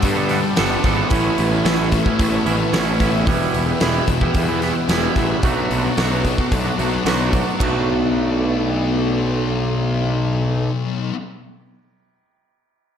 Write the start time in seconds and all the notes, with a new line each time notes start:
Already playing: G2 D3 G3 B3 D4 A4 B4 G5 A5 D6
0.02 G2 D3 G3 B3 D4, kick, open hi-hat
0.16 D3 G3 B3 D4 A4
0.29 G2 D3 G3 B3 D4 A4, snare, open hi-hat
0.43 D3 G3, muted clean electric guitar stroke
0.55 G1 G2 D3 G3 B3 D4 A4, snare, open hi-hat
0.83 G#1 G2 D3 G3 B3 D4 A4, kick, snare, open hi-hat
0.97 B3 D4 A4
1.10 A1 A2 E3 A3 B3 C#4 E4 E5 C#6, kick, open hi-hat
1.38 A1 A2 E3 A3, open hi-hat
1.51 A3 B3 C#4 E4
1.55 E3
1.63 A1 A2 E3 A3 B3 C#4 E4, snare, open hi-hat
1.67 A3
1.91 A2 E3 A3 C#4 E4, muted clean electric guitar stroke, kick, open hi-hat
1.95 A3
2.04 A3 B3 C#4 E4, kick
2.08 E3
2.17 A1 A2 E3 A3 C#4 E4, kick, open hi-hat
2.31 A3 B3 C#4 E4
2.36 E3
2.44 A1 A2 E3 B3 C#4 E4, open hi-hat
2.49 A3
2.58 A3, muted clean electric guitar stroke
2.63 E3
2.72 A1 A2 E3 A3 B3 C#4 E4, snare, open hi-hat
2.99 A2 E3 A3 B3 C#4 E4, kick, open hi-hat
3.13 B3 C#4 E4
3.26 E1 E2 B2 E3 G3 B3 E4 G5 E6, kick, open hi-hat
3.53 E1 E2 B2 E3, open hi-hat
3.67 B2 E3 G3 B3 E4
3.80 E1 E2 B2 E3 G3 B3 E4, snare, open hi-hat
4.07 E1 E2 B2 E3, muted clean electric guitar stroke, kick, open hi-hat
4.20 B2 E3 G3 B3 E4, kick
4.34 E2, kick, open hi-hat
4.48 B2 E3 G3 B3 E4
4.61 E2 B2 E3 G3 B3 E4, snare, open hi-hat
4.75 B2 E3, muted clean electric guitar stroke
4.88 E1 E2 B2 E3 G3 B3 E4, snare, open hi-hat
5.16 A1 E2 B2 E3 G3 B3 E4, kick, snare, open hi-hat
5.29 E3 G3 B3 E4
5.43 B1 B2 F#3 A3 B3 D4 F#4 F#5 A5 D6, kick, open hi-hat
5.69 B1 B2 F#3 B3, open hi-hat
5.84 F#3 A3 B3 D4 F#4
5.96 B1 B2 F#3 A3 B3 D4 F#4, snare, open hi-hat
6.24 B2 F#3 B3, muted clean electric guitar stroke, kick, open hi-hat
6.38 F#3 A3 B3 D4 F#4, kick
6.52 B1, kick, open hi-hat
6.64 A3 B3 D4 F#4
6.68 F#3
6.78 B1 B2 F#3 A3 B3 D4 F#4, open hi-hat
6.92 F#3 B3, muted clean electric guitar stroke
7.05 B1 B2 F#3 A3 B3 D4 F#4, snare, open hi-hat
7.32 B2 F#3 A3 B3 D4 F#4, kick, open hi-hat
7.47 A3 D4 F#4
7.59 B1 B2 F#3 A3 B3 D4 F#4 A4 D5, kick, ride bell
7.64 B3